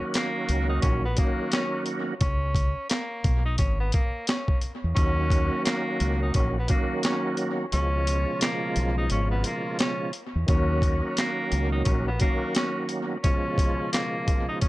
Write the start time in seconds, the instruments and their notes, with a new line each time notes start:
Already playing: tonewheel organ D#3 F#3 A#3 C#4 F#4, tenor saxophone C#4
0.14 tenor saxophone A#3, snare, clap, closed hi-hat
0.49 fingered electric bass C#2, closed hi-hat
0.69 tenor saxophone D#4
0.81 fingered electric bass A#1, tenor saxophone C#4, kick, closed hi-hat
1.05 tenor saxophone B3
1.16 tonewheel organ D#3 F#3 A#3 C#4 F#4, tenor saxophone A#3, kick, closed hi-hat
1.52 tenor saxophone C#4, snare, clap, closed hi-hat
1.86 closed hi-hat
2.21 fingered electric bass C#2, tenor saxophone C#4, kick, closed hi-hat
2.55 kick, closed hi-hat
2.89 tenor saxophone A#3, snare, clap, closed hi-hat
3.24 fingered electric bass B1, kick, closed hi-hat
3.45 tenor saxophone D#4
3.58 fingered electric bass G#1, tenor saxophone C#4, kick, closed hi-hat
3.80 tenor saxophone B3
3.92 tenor saxophone A#3, kick, closed hi-hat
4.27 tenor saxophone C#4, snare, clap, closed hi-hat
4.48 kick
4.61 closed hi-hat
4.84 fingered electric bass E2
4.95 fingered electric bass D#2, tonewheel organ D#3 F#3 A#3 C#4 F#4, tenor saxophone C#4, kick, closed hi-hat
5.30 kick, closed hi-hat
5.65 tenor saxophone A#3, snare, clap, closed hi-hat
6.00 fingered electric bass C#2, closed hi-hat
6.22 tenor saxophone D#4
6.34 fingered electric bass A#1, tenor saxophone C#4, kick, closed hi-hat
6.59 tenor saxophone B3
6.67 tonewheel organ D#3 F#3 A#3 C#4 F#4, tenor saxophone A#3, kick, closed hi-hat
7.03 tenor saxophone C#4, snare, clap, closed hi-hat
7.37 closed hi-hat
7.72 fingered electric bass C#2, tonewheel organ B2 C#3 F3 G#3 F4, tenor saxophone C#4, closed hi-hat
8.07 closed hi-hat
8.41 tenor saxophone A#3, snare, clap, closed hi-hat
8.76 fingered electric bass B1, closed hi-hat
8.98 tenor saxophone D#4
9.10 fingered electric bass G#1, tenor saxophone C#4, closed hi-hat
9.31 tenor saxophone B3
9.44 tenor saxophone A#3, closed hi-hat
9.79 tenor saxophone C#4, snare, clap, closed hi-hat
10.13 closed hi-hat
10.36 fingered electric bass E2
10.46 fingered electric bass D#2, tonewheel organ D#3 F#3 A#3 C#4 F#4, tenor saxophone C#4, kick, closed hi-hat
10.82 kick, closed hi-hat
11.17 tenor saxophone A#3, snare, clap, closed hi-hat
11.52 fingered electric bass C#2, closed hi-hat
11.72 tenor saxophone D#4
11.84 fingered electric bass A#1, tenor saxophone C#4, kick, closed hi-hat
12.08 tenor saxophone B3
12.19 tonewheel organ D#3 F#3 A#3 C#4 F#4, tenor saxophone A#3, kick, closed hi-hat
12.55 tenor saxophone C#4, snare, clap, closed hi-hat
12.89 closed hi-hat
13.23 tonewheel organ B2 C#3 F3 G#3 F4, tenor saxophone C#4, kick, closed hi-hat
13.58 kick, closed hi-hat
13.92 tenor saxophone A#3, snare, clap, closed hi-hat
14.28 kick, closed hi-hat
14.48 tenor saxophone D#4
14.61 tenor saxophone C#4, kick, closed hi-hat